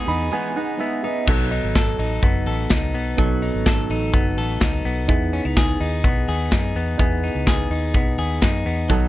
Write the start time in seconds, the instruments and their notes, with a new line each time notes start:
Already playing: clean electric guitar B3 G#4, reed electric piano D#4 E4 G#4
0.07 fingered electric bass E2, steel-string acoustic guitar B3 D#4 G#4, clean electric guitar D#4, reed electric piano B5, open hi-hat
0.30 steel-string acoustic guitar E3 G#3 B3 D#4 G#4, clean electric guitar B3, reed electric piano G#5
0.54 steel-string acoustic guitar B3 D#4 G#4, clean electric guitar D#4, reed electric piano F#5
0.78 steel-string acoustic guitar G#3 B3 D#4 G#4, clean electric guitar B3, reed electric piano E5
1.03 steel-string acoustic guitar B3 D#4 G#4, clean electric guitar D#4, reed electric piano D#5
1.27 fingered electric bass B1, clean electric guitar F#3, reed electric piano B3 D#4 A4, kick, crash
1.51 clean electric guitar D#4, open hi-hat
1.63 fingered electric bass G#1
1.75 clean electric guitar A4, kick, snare, closed hi-hat
1.99 fingered electric bass A1, clean electric guitar D#4, open hi-hat
2.23 fingered electric bass F#1, clean electric guitar B3, kick, closed hi-hat
2.46 fingered electric bass A1, clean electric guitar A4, open hi-hat
2.70 fingered electric bass C#2, clean electric guitar D#4, kick, snare, closed hi-hat
2.94 fingered electric bass B1, clean electric guitar B3, open hi-hat
3.17 fingered electric bass B1, clean electric guitar F#3, reed electric piano B3 D#4 A4, kick, closed hi-hat
3.42 clean electric guitar D#4, open hi-hat
3.54 fingered electric bass G#1
3.66 clean electric guitar A4, kick, snare, closed hi-hat
3.90 fingered electric bass A1, clean electric guitar D#4, open hi-hat
4.14 fingered electric bass F#1, clean electric guitar B3, kick, closed hi-hat
4.37 fingered electric bass A1, clean electric guitar A4, open hi-hat
4.61 fingered electric bass C#2, clean electric guitar D#4, kick, snare, closed hi-hat
4.85 fingered electric bass B1, clean electric guitar B3, open hi-hat
5.08 fingered electric bass E2, clean electric guitar B3, reed electric piano D#4 E4 G#4, kick, closed hi-hat
5.33 clean electric guitar C#4, open hi-hat
5.45 fingered electric bass C#2, clean electric guitar D#4
5.57 clean electric guitar G#4, kick, snare, closed hi-hat
5.80 fingered electric bass D#2, clean electric guitar D#4, open hi-hat
6.04 fingered electric bass B1, clean electric guitar B3, kick, closed hi-hat
6.28 fingered electric bass D#2, clean electric guitar G#4, open hi-hat
6.51 fingered electric bass F#2, clean electric guitar D#4, kick, snare, closed hi-hat
6.75 fingered electric bass E2, clean electric guitar B3, open hi-hat
6.98 fingered electric bass E2, clean electric guitar B3, reed electric piano D#4 E4 G#4, kick, closed hi-hat
7.24 clean electric guitar D#4, open hi-hat
7.35 fingered electric bass C#2
7.47 clean electric guitar G#4, kick, snare, closed hi-hat
7.70 fingered electric bass D#2, clean electric guitar D#4, open hi-hat
7.94 fingered electric bass B1, clean electric guitar B3, kick, closed hi-hat
8.18 fingered electric bass D#2, clean electric guitar G#4, open hi-hat
8.42 fingered electric bass F#2, clean electric guitar D#4, kick, snare, closed hi-hat
8.65 fingered electric bass E2, clean electric guitar B3, open hi-hat
8.88 fingered electric bass B1, steel-string acoustic guitar B2 D#3 F#3 B3 D#4 A4, clean electric guitar F#3, reed electric piano B3 D#4 A4, kick, closed hi-hat